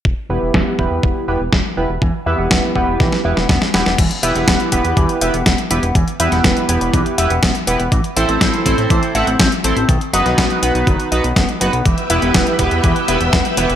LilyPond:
<<
  \new Staff \with { instrumentName = "String machine" } { \time 4/4 \key e \minor \tempo 4 = 122 r1 | r1 | r1 | r1 |
r1 | r1 | <b' e'' g'' e'''>1 | }
  \new Staff \with { instrumentName = "Analog polysynth" } { \time 4/4 \key e \minor r8 <b e' g' b'>4 <b e' g' b'>4 <b e' g' b'>16 r8. <b e' g' b'>16 r16 | r8 <b e' g' b'>4 <b e' g' b'>4 <b e' g' b'>16 r8. <b e' g' b'>16 r16 | r8 <b e' g' b'>4 <b e' g' b'>4 <b e' g' b'>16 r8. <b e' g' b'>16 r16 | r8 <b e' g' b'>4 <b e' g' b'>4 <b e' g' b'>16 r8. <b e' g' b'>16 r16 |
r8 <c' e' a' c''>4 <c' e' a' c''>4 <c' e' a' fis''>16 r8. <c' e' a' c''>16 r16 | r8 <b dis' fis' b'>4 <b dis' fis' b'>4 <b dis' fis' b'>16 r8. <b dis' fis' b'>16 r16 | r8 <b e' g' b'>4 <b e' g' b'>4 <b e' g' b'>16 r8. <b e' g' b'>16 r16 | }
  \new Staff \with { instrumentName = "Clean electric guitar" } { \time 4/4 \key e \minor r1 | e16 r16 e''16 b16 b16 r16 b16 b16 e16 r16 e''16 b16 b16 r16 b16 b16 | e16 r16 e''16 b16 b16 r16 b16 b16 e16 r16 e''16 b16 b16 r16 b16 b16 | e16 r16 e''16 b16 b16 r16 b16 b16 e16 r16 e''16 b16 b16 r16 b16 b16 |
e16 r16 e''16 c'16 c'16 r16 c'16 c'16 e16 r16 e''16 c'16 c'16 r16 c'16 c'16 | dis16 r16 dis''16 b16 b16 r16 b16 b16 dis16 r16 dis''16 b16 b16 r16 b16 b16 | e16 r16 e''16 b16 b16 r16 b16 b16 e16 r16 e''16 b16 b16 r16 b16 b16 | }
  \new Staff \with { instrumentName = "Analog synth bass" } { \clef bass \time 4/4 \key e \minor e,,16 r16 e,,16 e,,16 e,,16 r16 e,,16 e,16 e,,16 r16 e,,16 e,,16 e,,16 r16 e,,16 e,,16 | e,,16 r16 e,16 e,,16 e,,16 r16 e,,16 e,,16 b,,16 r16 e,,16 e,,16 e,,16 r16 e,,16 e,,16 | e,,16 r16 e,,16 e,,16 e,,16 r16 e,,16 e,16 e,,16 r16 e,,16 e,,16 e,,16 r16 e,,16 e,,16 | e,,16 r16 e,16 e,,16 e,,16 r16 e,,16 e,,16 b,,16 r16 e,,16 e,,16 e,,16 r16 e,,16 e,,16 |
a,,16 r16 a,,16 a,,16 a,,16 r16 a,,16 a,16 a,,16 r16 a,,16 a,,16 a,,16 r16 a,,16 a,,16 | b,,16 r16 fis,,16 b,,16 b,,16 r16 b,,16 b,,16 fis,,16 r16 b,,16 b,,16 fis,,16 r16 fis,,16 b,,16 | e,,16 r16 e,,16 e,,16 e,,16 r16 e,,16 e,16 e,,16 r16 e,,16 e,,16 e,,16 r16 e,,16 e,,16 | }
  \new DrumStaff \with { instrumentName = "Drums" } \drummode { \time 4/4 bd4 <bd sn>8 bd8 bd4 <bd sn>4 | bd4 <bd sn>8 bd8 <bd sn>16 sn8 sn16 <bd sn>16 sn16 sn16 sn16 | <cymc hh bd>16 hh16 hh16 hh16 <hh bd sn>16 hh16 <hh bd>16 hh16 <hh bd>16 hh16 hh16 hh16 <hh bd sn>16 hh16 hh16 hh16 | <hh bd>16 hh16 hh16 <hh sn>16 <hh bd sn>16 hh16 hh16 hh16 <hh bd>16 hh16 hh16 hh16 <hh bd sn>16 hh16 hh16 hh16 |
<hh bd>16 hh16 hh16 hh16 <hh bd sn>16 hh16 <hh bd>16 hh16 <hh bd>16 hh16 hh16 hh16 <hh bd sn>16 hh16 hh16 hh16 | <hh bd>16 hh16 hh16 <hh sn>16 <hh bd sn>16 hh16 hh16 hh16 <hh bd>16 hh16 hh16 hh16 <hh bd sn>16 hh16 hh16 hh16 | <hh bd>16 hh16 hh16 hh16 <hh bd sn>16 hh16 <hh bd>16 hh16 <hh bd>16 hh16 hh16 hh16 <hh bd sn>16 hh16 hh16 hh16 | }
>>